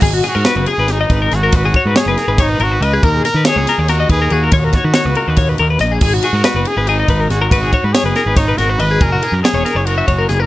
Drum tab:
CC |x------|-------|-------|-------|
RD |-xxxxxx|xxxxxxx|xxxxxxx|xxxxxxx|
SD |-oo-o-o|--ooo--|-oooo--|-oo---o|
BD |o----o-|oo--o--|o----o-|oo--o--|

CC |x------|-------|-------|
RD |-xxxxxx|xxxxxxx|xxxxxxx|
SD |--o---o|--oooo-|--oo--o|
BD |o----o-|oo--o--|o----o-|